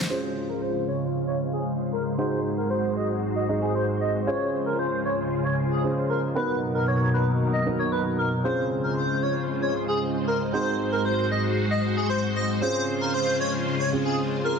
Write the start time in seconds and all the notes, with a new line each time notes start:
0.01 snare
0.09 C#3 G#3 C#4 F4 G#4 C5
0.49 A#4
0.62 C5
0.88 C#5
1.27 C#5
1.53 G#4
1.92 A#4
2.18 G#2 D#4 F#4 G#4 C5
2.57 A#4
2.70 C5
2.96 D#5
3.36 D#5
3.49 D#4 F#4 G#4 D#5
3.62 G#4
3.75 C5
4.01 D#5
4.27 C#3 G#3 C#4 F4 G#4 C5 C#5
4.66 A#4
4.79 C5
5.05 C#5
5.44 C#5
5.70 G#4
5.83 C#4 F4 G#4 C5
6.09 A#4
6.35 B2 F#3 B3 D#4 F#4 A#4 B4
6.75 A#4
6.88 C#5
7.14 B4
7.53 D#5
7.66 B3 D#4 F#4 A#4
7.79 C#5
7.92 B4
8.18 A#4
8.44 C#3 G#3 C4 C#4 F4 G#4 C5
8.84 A#4
8.97 C5
9.23 C#5
9.62 C#5
9.88 G#4
10.27 A#4
10.53 G#2 C4 D#4 F#4 G#4 C5
10.92 A#4
11.05 C5
11.31 D#5
11.71 D#5
11.97 G#4
12.10 C5
12.36 D#5
12.61 C#3 G#3 C4 C#4 F4 G#4 C5
13.01 A#4
13.14 C5
13.40 C#5
13.79 C#5
13.92 C4 C#4 F4 G#4
14.05 G#4
14.44 A#4